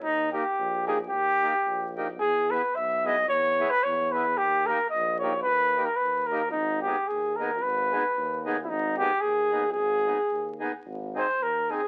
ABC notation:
X:1
M:2/4
L:1/16
Q:"Swing" 1/4=111
K:G#m
V:1 name="Trumpet"
D2 =G4 ^G2 | =G6 z2 | G2 B2 e2 d2 | c3 B c2 B2 |
=G2 A2 d2 c2 | B3 A B2 A2 | D2 =G2 ^G2 A2 | B6 z3/2 E/2 |
D2 =G2 ^G4 | G6 z2 | [K:Ab] z2 c2 B2 A2 |]
V:2 name="Accordion"
z2 [A,D=G]2 z2 [A,DG]2 | z2 [A,D=G]2 z2 [A,DG]2 | z2 [B,EG]2 z2 [B,EG]2 | z2 [B,EG]2 z2 [B,EG]2 |
z2 [A,D=G]2 z2 [A,DG]2 | z2 [A,D=G]2 z2 [A,DG]2 | z2 [B,DG]2 z2 [B,DG]2 | z2 [B,DG]2 z2 [B,DG]2 |
z2 [B,DG]2 z2 [B,DG]2 | z2 [B,DG]2 z2 [B,DG]2 | [K:Ab] z2 [CEA]2 z2 [CEA]2 |]
V:3 name="Tuba" clef=bass
D,,4 A,,,4 | D,,4 A,,,4 | E,,4 B,,,4 | E,,4 E,,4 |
D,,4 A,,,4 | D,,4 D,,4 | G,,,4 D,,4 | G,,,4 D,,4 |
G,,,4 D,,4 | G,,,4 D,,4 | [K:Ab] A,,,4 E,,4 |]